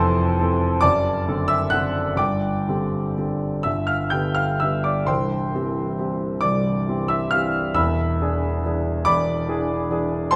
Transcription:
0.00 0.85 F1 medium
0.00 0.85 F2 medium
0.00 0.35 E3 medium
0.00 0.35 C4 medium
0.00 0.35 A4 medium
0.00 0.78 C5 medium
0.00 0.78 A5 medium
0.00 0.81 C6 loud
0.40 0.80 E3 medium
0.40 0.80 C4 medium
0.40 0.80 A4 medium
0.81 1.26 F#1 medium
0.81 1.26 F#2 medium
0.81 1.45 D5 medium
0.81 1.45 A5 medium
0.81 1.48 D6 loud
1.28 1.69 D3 medium
1.28 1.69 C4 medium
1.28 1.69 A4 medium
1.48 1.71 E5 medium
1.48 1.71 E6 loud
1.70 2.15 D3 medium
1.70 2.16 C4 medium
1.70 2.15 F#5 medium
1.70 2.18 F#6 loud
1.74 2.16 A4 medium
2.16 2.65 G1 medium
2.16 2.67 G2 medium
2.16 3.61 D5 medium
2.16 3.62 G5 medium
2.16 3.65 D6 medium
2.68 3.14 D3 soft
2.68 3.14 C4 medium
2.68 3.14 G4 medium
3.18 3.62 D3 soft
3.18 3.62 C4 soft
3.18 3.62 G4 soft
3.63 4.13 G1 medium
3.63 4.13 G2 medium
3.63 3.87 E5 medium
3.63 3.89 E6 medium
3.87 4.11 F5 medium
3.87 4.13 F6 medium
4.10 4.58 D3 soft
4.10 4.58 B3 soft
4.10 4.58 G4 soft
4.10 4.35 G5 medium
4.10 4.36 G6 medium
4.35 4.59 F5 medium
4.35 4.61 F6 medium
4.60 5.06 D3 soft
4.60 5.06 B3 soft
4.60 4.84 E5 medium
4.60 4.85 E6 medium
4.64 5.06 G4 soft
4.84 5.07 D5 medium
4.84 5.08 D6 medium
5.05 5.50 C2 medium
5.05 6.38 C5 medium
5.05 6.39 G5 medium
5.05 6.42 C6 medium
5.09 5.53 C1 medium
5.54 5.95 E3 medium
5.54 5.95 C4 medium
5.54 5.95 G4 medium
5.99 6.39 E3 soft
5.99 6.39 C4 soft
5.99 6.40 G4 medium
6.41 6.87 C1 medium
6.41 6.87 C2 medium
6.41 7.05 D5 medium
6.41 7.09 D6 medium
6.88 7.29 E3 soft
6.88 7.29 C4 soft
6.88 7.29 G4 medium
7.08 7.31 E5 medium
7.08 7.31 E6 medium
7.31 7.73 E3 soft
7.31 7.74 C4 soft
7.31 7.74 G4 medium
7.31 7.73 F5 medium
7.31 7.76 F6 loud
7.74 8.18 E1 medium
7.74 9.03 E5 medium
7.74 9.03 B5 medium
7.74 9.06 E6 loud
7.78 8.20 E2 medium
8.22 8.61 E3 medium
8.22 8.61 D4 medium
8.22 8.61 G#4 medium
8.65 9.04 E3 medium
8.65 9.04 D4 soft
8.65 9.04 G#4 medium
9.05 9.48 E1 medium
9.05 9.48 E2 medium
9.05 10.29 D5 medium
9.05 10.29 B5 medium
9.05 10.33 D6 loud
9.49 9.87 E3 medium
9.49 9.87 D4 medium
9.49 9.87 G#4 medium
9.90 10.29 E3 medium
9.90 10.30 D4 medium
9.90 10.30 G#4 medium
10.31 10.36 C5 medium
10.31 10.36 A5 medium
10.31 10.36 C6 loud

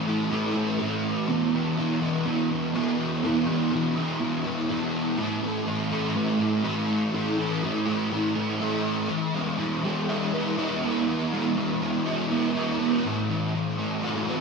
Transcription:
0.00 0.29 A2 medium
0.06 0.31 E3 medium
0.06 0.31 A3 medium
0.30 0.77 A2 medium
0.30 0.56 E3 medium
0.30 0.52 A3 loud
0.54 0.78 E3 medium
0.54 0.80 A3 medium
0.78 1.26 A2 medium
0.78 1.30 E3 medium
0.78 1.27 A3 medium
1.27 1.77 E2 medium
1.27 1.54 B2 medium
1.27 1.53 E3 loud
1.53 1.77 B2 medium
1.53 1.79 E3 medium
1.77 2.24 E2 medium
1.77 2.02 B2 medium
1.77 2.01 E3 medium
2.01 2.25 B2 medium
2.01 2.26 E3 medium
2.25 2.72 E2 loud
2.25 2.51 B2 loud
2.25 2.49 E3 loud
2.50 2.74 B2 medium
2.50 2.76 E3 medium
2.74 3.22 E2 medium
2.74 3.24 B2 medium
2.74 3.25 E3 medium
3.23 3.71 E2 medium
3.23 3.47 B2 loud
3.23 3.46 E3 loud
3.46 3.72 B2 medium
3.46 3.74 E3 medium
3.72 4.19 E2 medium
3.72 3.97 B2 medium
3.72 3.96 E3 medium
3.96 4.20 B2 medium
3.96 4.21 E3 medium
4.20 4.68 E2 loud
4.20 4.46 B2 loud
4.20 4.44 E3 loud
4.44 4.69 B2 medium
4.44 4.71 E3 medium
4.69 5.17 E2 medium
4.69 5.17 B2 medium
4.69 5.19 E3 medium
5.18 5.66 A2 medium
5.18 5.44 E3 loud
5.18 5.42 A3 loud
5.42 5.68 E3 medium
5.42 5.69 A3 medium
5.66 6.14 A2 medium
5.66 5.93 E3 medium
5.66 5.91 A3 medium
5.91 6.16 E3 medium
5.91 6.15 A3 medium
6.15 6.63 A2 loud
6.15 6.41 E3 medium
6.15 6.38 A3 loud
6.39 6.64 E3 medium
6.39 6.65 A3 medium
6.64 7.12 A2 medium
6.64 7.13 E3 medium
6.64 7.14 A3 medium
7.13 7.62 A2 medium
7.13 7.39 E3 medium
7.13 7.36 A3 medium
7.38 7.62 E3 medium
7.38 7.64 A3 medium
7.63 8.09 A2 medium
7.63 7.87 E3 medium
7.63 7.85 A3 medium
7.86 8.10 E3 medium
7.86 8.11 A3 medium
8.10 8.58 A2 loud
8.10 8.36 E3 loud
8.10 8.34 A3 loud
8.35 8.60 E3 medium
8.35 8.60 A3 medium
8.59 9.08 A2 medium
8.59 9.08 E3 medium
8.59 9.09 A3 medium
9.09 9.58 E3 medium
9.34 9.83 G#3 medium
9.58 11.07 E3 medium
9.84 11.08 G#3 medium
10.09 10.57 E4 medium
10.33 10.83 B3 medium
10.57 12.05 E4 medium
10.84 12.07 B3 medium
11.07 11.56 E3 medium
11.33 11.80 G#3 medium
11.57 13.29 E3 medium
11.81 13.05 G#3 medium
12.06 12.55 E4 medium
12.32 12.78 B3 medium
12.56 14.03 E4 medium
12.80 13.05 B3 medium
13.05 14.28 A2 medium
13.30 13.55 E3 medium
13.55 14.41 E3 medium
13.79 14.41 A3 medium
14.03 14.41 F#4 medium
14.29 14.41 C4 medium

